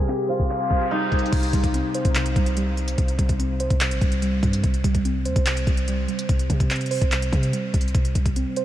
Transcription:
0.00 0.50 C3 medium
0.00 0.71 G3 loud
0.00 0.08 C4 medium
0.00 0.29 F4 medium
0.00 0.15 G#4 medium
0.00 1.27 A#4 medium
0.00 0.29 C5 medium
0.00 0.92 C5 medium
0.08 1.12 C4 medium
0.08 2.44 G4 medium
0.08 clap medium
0.14 closed hi-hat medium
0.19 closed hi-hat medium
0.24 closed hi-hat medium
0.29 2.81 F4 medium
0.29 1.32 C5 medium
0.29 closed hi-hat medium
0.39 kick loud
0.39 closed hi-hat medium
0.50 1.32 C3 medium
0.50 clap loud
0.60 closed hi-hat medium
0.70 0.90 G3 medium
0.70 kick loud
0.70 closed hi-hat soft
0.81 closed hi-hat medium
0.91 1.10 G3 medium
0.91 3.62 D#4 medium
0.91 closed hi-hat medium
1.11 1.32 G3 medium
1.11 kick medium
1.11 closed hi-hat medium
1.19 closed hi-hat medium
1.26 closed hi-hat soft
1.33 1.52 C2 loud
1.33 2.14 C3 medium
1.33 kick loud
1.33 closed hi-hat medium
1.33 crash loud
1.43 closed hi-hat medium
1.53 1.83 C2 loud
1.53 2.34 G3 medium
1.53 kick medium
1.53 closed hi-hat medium
1.64 kick loud
1.64 closed hi-hat medium
1.74 2.77 C4 medium
1.74 closed hi-hat medium
1.94 2.98 C5 medium
1.94 closed hi-hat medium
2.05 2.35 C2 loud
2.05 kick loud
2.05 closed hi-hat medium
2.15 2.96 C3 medium
2.15 clap loud
2.15 closed hi-hat medium
2.26 closed hi-hat medium
2.36 2.96 C2 loud
2.36 2.56 G3 medium
2.36 kick loud
2.36 closed hi-hat medium
2.46 closed hi-hat medium
2.57 2.76 G3 medium
2.57 closed hi-hat medium
2.77 3.18 G3 medium
2.77 closed hi-hat soft
2.88 closed hi-hat medium
2.97 3.18 C2 loud
2.97 3.80 C3 medium
2.97 kick loud
2.97 closed hi-hat medium
3.08 closed hi-hat medium
3.19 3.68 C2 loud
3.19 4.00 G3 medium
3.19 kick medium
3.19 closed hi-hat medium
3.29 kick loud
3.29 closed hi-hat medium
3.39 4.43 C4 medium
3.39 closed hi-hat medium
3.60 4.64 C5 loud
3.60 closed hi-hat medium
3.70 3.93 C2 loud
3.70 kick loud
3.70 closed hi-hat medium
3.81 4.63 C3 medium
3.81 clap loud
3.81 closed hi-hat medium
3.91 4.01 A#1 loud
3.91 closed hi-hat medium
4.01 4.41 C2 loud
4.01 4.21 G3 medium
4.01 kick loud
4.01 closed hi-hat soft
4.12 closed hi-hat medium
4.22 4.42 G3 medium
4.22 closed hi-hat medium
4.43 4.63 G2 loud
4.43 4.64 G3 medium
4.43 kick loud
4.43 closed hi-hat soft
4.53 closed hi-hat medium
4.64 4.83 C2 loud
4.64 5.45 C3 medium
4.64 kick loud
4.64 closed hi-hat medium
4.74 closed hi-hat medium
4.84 5.27 C2 loud
4.84 5.66 G3 medium
4.84 kick medium
4.84 closed hi-hat medium
4.95 kick loud
4.95 closed hi-hat medium
5.05 6.08 C4 medium
5.05 closed hi-hat medium
5.25 5.35 D#2 loud
5.25 6.29 C5 loud
5.25 closed hi-hat medium
5.36 5.66 C2 loud
5.36 kick loud
5.36 closed hi-hat medium
5.46 6.28 C3 medium
5.46 clap loud
5.46 closed hi-hat medium
5.57 closed hi-hat medium
5.67 6.07 C2 loud
5.67 5.87 G3 medium
5.67 kick loud
5.67 closed hi-hat medium
5.77 closed hi-hat medium
5.88 6.07 G3 loud
5.88 closed hi-hat medium
6.08 6.48 G3 medium
6.08 closed hi-hat soft
6.19 closed hi-hat medium
6.29 6.49 C2 loud
6.29 7.11 C3 medium
6.29 kick loud
6.29 closed hi-hat medium
6.39 closed hi-hat medium
6.50 6.99 C3 loud
6.50 7.31 G3 medium
6.50 kick medium
6.50 closed hi-hat medium
6.60 kick loud
6.60 closed hi-hat medium
6.71 7.74 C4 medium
6.71 clap medium
6.71 closed hi-hat medium
6.76 closed hi-hat medium
6.81 closed hi-hat medium
6.86 closed hi-hat medium
6.91 7.94 C5 medium
6.91 open hi-hat medium
7.01 7.31 C2 medium
7.01 kick loud
7.01 closed hi-hat medium
7.12 7.94 C3 medium
7.12 clap loud
7.12 closed hi-hat medium
7.22 closed hi-hat medium
7.33 7.52 C3 loud
7.33 7.52 G3 medium
7.33 kick loud
7.33 closed hi-hat soft
7.43 closed hi-hat medium
7.53 7.72 G3 medium
7.53 closed hi-hat medium
7.73 7.94 C2 loud
7.73 7.94 G3 medium
7.73 kick medium
7.73 closed hi-hat medium
7.81 closed hi-hat medium
7.88 closed hi-hat soft
7.95 8.14 C2 loud
7.95 8.65 C3 medium
7.95 kick loud
7.95 closed hi-hat medium
8.05 closed hi-hat medium
8.15 8.45 C2 loud
8.15 8.65 G3 medium
8.15 kick medium
8.15 closed hi-hat medium
8.26 kick loud
8.26 closed hi-hat medium
8.36 8.65 C4 medium
8.36 closed hi-hat medium
8.56 8.65 C5 loud
8.56 closed hi-hat medium

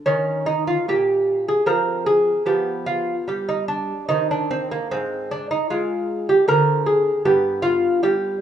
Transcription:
0.06 0.71 D#3 medium
0.06 0.45 C#4 medium
0.46 0.66 D#4 medium
0.67 0.87 F4 medium
0.88 1.51 A#2 medium
0.88 1.45 G4 medium
1.48 1.66 G#4 medium
1.66 2.31 F3 medium
1.66 2.43 C4 medium
1.66 2.04 A#4 medium
2.06 2.45 G#4 medium
2.46 3.12 F3 medium
2.46 4.05 B3 soft
2.46 2.86 G4 medium
2.86 3.26 F4 medium
3.28 3.93 G3 medium
3.28 3.49 G4 medium
3.49 3.68 D#4 medium
3.68 4.07 D4 medium
4.09 4.75 D#3 medium
4.09 4.49 C4 soft
4.09 4.29 D#4 medium
4.31 4.51 D4 medium
4.51 4.71 C4 medium
4.71 4.91 A#3 medium
4.91 5.55 G#2 medium
4.91 5.30 C4 medium
5.31 5.50 D4 medium
5.51 5.70 D#4 medium
5.70 6.32 G#3 medium
5.70 6.26 F4 medium
6.29 6.48 G4 medium
6.48 7.10 D3 medium
6.48 7.21 C4 soft
6.48 6.85 A#4 loud
6.86 7.23 G#4 medium
7.25 7.87 G2 medium
7.25 8.41 B3 medium
7.25 7.62 G4 medium
7.62 8.00 F4 loud
8.03 8.41 G3 medium
8.03 8.39 G4 medium

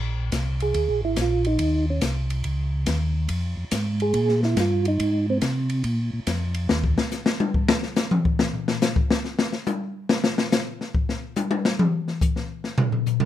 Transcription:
0.00 0.31 A#1 medium
0.32 0.73 C2 medium
0.32 kick soft
0.32 snare medium
0.32 hi-hat pedal medium
0.32 ride medium
0.60 1.01 G#4 medium
0.60 ride soft
0.74 0.88 D2 medium
0.74 kick soft
0.74 ride medium
0.89 1.03 A#1 medium
1.02 1.16 G#1 medium
1.02 1.18 E4 medium
1.16 1.58 A#1 medium
1.16 kick soft
1.16 snare medium
1.16 hi-hat pedal medium
1.16 ride medium
1.22 1.47 F4 medium
1.44 1.85 D#4 medium
1.44 ride soft
1.59 2.01 D#2 medium
1.59 kick soft
1.59 ride medium
1.90 2.03 C#4 medium
2.01 2.43 C2 medium
2.01 kick soft
2.01 snare medium
2.01 hi-hat pedal medium
2.01 ride medium
2.30 ride soft
2.44 2.86 C#2 medium
2.44 kick soft
2.44 ride medium
2.86 3.28 D#2 medium
2.86 kick soft
2.86 snare medium
2.86 hi-hat pedal medium
2.86 ride medium
3.29 3.56 F2 medium
3.29 kick soft
3.29 ride medium
3.57 3.64 F2 soft
3.71 4.13 G#2 loud
3.71 kick soft
3.71 snare medium
3.71 hi-hat pedal medium
3.71 ride medium
4.00 4.41 G#4 medium
4.00 ride soft
4.14 4.55 A#2 medium
4.14 kick soft
4.14 ride medium
4.29 snare soft
4.43 4.58 E4 medium
4.43 snare soft
4.57 4.98 G2 loud
4.57 4.86 F4 medium
4.57 kick soft
4.57 snare medium
4.57 hi-hat pedal soft
4.57 ride medium
4.85 5.26 D#4 medium
4.85 ride soft
5.00 5.41 G#2 medium
5.00 kick soft
5.00 ride medium
5.30 5.38 C4 medium
5.41 5.83 C3 medium
5.41 kick soft
5.41 snare medium
5.41 hi-hat pedal medium
5.41 ride medium
5.69 ride soft
5.84 6.11 A#2 medium
5.84 kick soft
5.84 ride medium
6.13 6.20 A#2 soft
6.26 6.68 F2 medium
6.26 kick soft
6.26 snare medium
6.26 hi-hat pedal medium
6.26 ride medium
6.54 ride medium
6.69 6.97 D#2 medium
6.69 snare loud
6.84 kick medium
6.98 snare medium
7.11 snare soft
7.11 hi-hat pedal medium
7.26 snare loud
7.40 high tom medium
7.54 kick medium
7.68 snare loud
7.82 snare soft
7.96 snare medium
7.96 hi-hat pedal medium
8.11 mid tom loud
8.25 kick medium
8.39 snare loud
8.54 floor tom soft
8.68 snare medium
8.82 snare loud
8.82 hi-hat pedal medium
8.96 kick medium
9.10 snare loud
9.25 snare soft
9.39 snare loud
9.53 snare medium
9.66 hi-hat pedal medium
9.66 high tom medium
10.09 snare loud
10.24 snare medium
10.38 snare medium
10.52 snare loud
10.52 hi-hat pedal medium
10.81 snare soft
10.95 kick medium
11.09 snare medium
11.36 hi-hat pedal medium
11.36 high tom medium
11.51 high tom medium
11.65 snare loud
11.79 mid tom loud
12.08 snare soft
12.21 kick medium
12.21 hi-hat pedal medium
12.36 snare soft
12.64 snare soft
12.78 floor tom loud
12.92 floor tom medium
13.06 floor tom soft
13.06 hi-hat pedal soft
13.20 floor tom loud

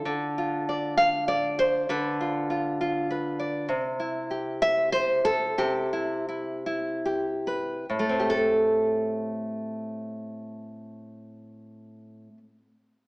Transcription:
0.00 0.38 F4 soft
0.05 1.88 D3 medium
0.38 1.86 F4 soft
0.69 0.97 D5 soft
0.97 1.28 F5 loud
1.28 2.19 D5 medium
1.59 1.89 C5 medium
1.89 3.69 D3 medium
1.89 3.09 B4 medium
2.21 2.49 F4 soft
2.50 2.80 F4 soft
2.81 3.66 F4 soft
3.10 3.72 B4 soft
3.39 3.65 D5 soft
3.69 5.53 C3 medium
4.00 5.92 E4 soft
4.31 5.58 G4 soft
4.62 4.92 E5 loud
4.92 5.24 C5 medium
5.25 6.28 A4 medium
5.58 7.84 C3 medium
5.58 7.04 G4 medium
5.93 6.27 E4 soft
6.29 6.65 E4 soft
6.66 7.84 E4 soft
7.06 7.85 G4 soft
7.47 7.85 B4 soft
7.90 12.28 A2 medium
7.99 12.37 A3 medium
8.09 12.47 C4 medium
8.19 12.58 G4 soft
8.30 12.64 A4 medium

